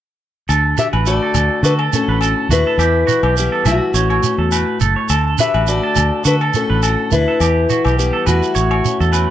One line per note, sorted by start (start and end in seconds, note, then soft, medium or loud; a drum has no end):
0.49 0.74 D2 medium
0.49 2.78 D3 medium
0.49 0.76 A4 medium
0.49 low agogo medium
0.49 shekere medium
0.78 1.92 F#4 medium
0.78 0.86 G4 medium
0.78 0.86 E5 medium
0.78 muted clean electric guitar stroke medium
0.78 shekere medium
0.93 1.18 A1 medium
0.93 1.20 B4 medium
0.93 low agogo medium
1.06 2.76 A3 medium
1.06 1.60 F#4 medium
1.06 1.63 A4 medium
1.06 1.60 D5 medium
1.06 shekere medium
1.23 1.34 A4 medium
1.34 1.48 D2 medium
1.34 1.63 A4 medium
1.34 low agogo medium
1.34 shekere medium
1.63 1.88 D3 loud
1.63 1.72 D4 medium
1.63 1.79 F#4 medium
1.63 2.79 A4 medium
1.63 1.73 B4 medium
1.63 shekere medium
1.79 2.07 A4 medium
1.79 low agogo medium
1.92 2.79 A2 medium
1.92 2.47 C#4 medium
1.92 2.21 F#4 medium
1.92 2.47 A4 medium
1.92 shekere medium
2.08 2.33 A1 medium
2.08 2.21 B4 medium
2.21 2.76 F#4 medium
2.21 2.49 A4 medium
2.21 low agogo medium
2.21 shekere soft
2.49 2.63 D#2 medium
2.49 2.76 D4 medium
2.49 3.33 E4 medium
2.49 2.65 F#4 medium
2.49 3.38 B4 medium
2.49 shekere medium
2.67 2.79 A4 medium
2.78 3.03 E2 medium
2.78 3.91 E3 medium
2.78 3.06 G4 medium
2.78 low agogo medium
2.78 shekere medium
3.07 3.36 E4 medium
3.07 3.22 F#4 medium
3.07 shekere medium
3.23 3.48 B1 medium
3.23 3.51 G4 medium
3.23 low agogo medium
3.37 3.94 G3 medium
3.37 3.64 B3 soft
3.37 3.64 E4 medium
3.37 3.67 G4 medium
3.37 shekere medium
3.52 3.64 A4 medium
3.65 3.79 B1 medium
3.65 4.77 A3 medium
3.65 3.91 E4 medium
3.65 4.77 F#4 medium
3.65 3.93 E5 medium
3.65 low agogo medium
3.65 shekere medium
3.94 4.19 A1 medium
3.94 5.10 A2 medium
3.94 4.51 A3 medium
3.94 4.22 C#4 medium
3.94 4.09 C#5 medium
3.94 shekere medium
4.10 4.37 C#5 medium
4.10 low agogo medium
4.23 4.52 C#4 soft
4.23 shekere medium
4.38 4.63 E2 medium
4.38 4.51 A4 medium
4.52 5.06 A3 medium
4.52 4.79 B4 medium
4.52 low agogo medium
4.52 shekere medium
4.80 4.94 F#1 medium
4.80 4.96 A4 medium
4.80 shekere medium
4.96 5.09 C#5 medium
5.09 5.34 D2 medium
5.09 7.40 D3 medium
5.09 5.37 A4 medium
5.09 low agogo medium
5.09 shekere medium
5.38 6.54 F#4 medium
5.38 5.66 G4 medium
5.38 5.53 B4 medium
5.38 5.68 E5 loud
5.38 shekere loud
5.54 5.79 A1 medium
5.54 5.81 B4 medium
5.54 low agogo medium
5.67 7.37 A3 medium
5.67 6.22 F#4 medium
5.67 6.24 A4 medium
5.67 6.21 D5 medium
5.67 shekere medium
5.83 5.95 A4 medium
5.96 6.10 D2 medium
5.96 6.23 A4 medium
5.96 low agogo medium
5.96 shekere medium
6.25 6.50 D3 loud
6.25 6.34 D4 medium
6.25 6.40 F#4 medium
6.25 7.40 A4 medium
6.25 6.34 B4 medium
6.25 shekere medium
6.41 6.68 A4 medium
6.41 low agogo medium
6.54 7.41 A2 medium
6.54 7.08 C#4 medium
6.54 6.83 F#4 medium
6.54 7.13 A4 medium
6.54 shekere loud
6.70 6.95 A1 medium
6.70 6.82 B4 medium
6.83 7.38 F#4 medium
6.83 7.10 A4 medium
6.83 low agogo medium
6.83 shekere medium
7.11 7.25 D2 medium
7.11 7.38 D4 medium
7.11 7.94 E4 medium
7.11 7.95 B4 medium
7.11 shekere medium
7.28 7.40 A4 medium
7.40 7.65 E2 medium
7.40 8.53 E3 medium
7.40 7.68 G4 medium
7.40 low agogo medium
7.40 shekere medium
7.70 7.98 E4 medium
7.70 7.84 F#4 medium
7.70 shekere medium
7.85 8.10 B1 medium
7.85 8.12 G4 medium
7.85 low agogo medium
7.85 shekere soft
7.98 8.56 G3 medium
7.98 8.25 B3 medium
7.98 8.27 E4 medium
7.98 8.28 G4 medium
7.98 shekere medium
8.13 8.26 A4 medium
8.26 8.40 E2 medium
8.26 9.30 A3 medium
8.26 8.53 E4 medium
8.26 9.30 F#4 medium
8.26 8.54 B4 medium
8.26 low agogo medium
8.26 shekere medium
8.43 shekere soft
8.55 8.81 A1 medium
8.55 9.30 A2 medium
8.55 8.70 C#5 medium
8.55 shekere medium
8.71 8.98 C#5 medium
8.71 low agogo medium
8.85 9.13 C#4 soft
8.85 shekere medium
9.00 9.25 E2 medium
9.00 9.12 A4 medium
9.00 shekere soft
9.13 9.30 A3 medium
9.13 9.30 C#4 soft
9.13 9.30 B4 medium
9.13 low agogo medium
9.13 shekere medium